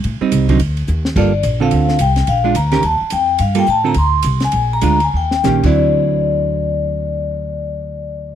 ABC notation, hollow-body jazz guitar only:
X:1
M:4/4
L:1/8
Q:"Swing" 1/4=212
K:Gdor
V:1 name="Hollow-body jazz guitar"
z [G,C_E]2 [D,^F,CE] z4 | [G,B,FA] z2 [D,CFA]3 z2 | z [_A,DF] z [_E,^CGB] z4 | z [G,B,FA] z [D,CFA] z4 |
z2 [_A,DF] z3 [_E,B,_DG] [=D,^F,C=E]- | [D,^F,CE]8- | [D,^F,CE]8 |]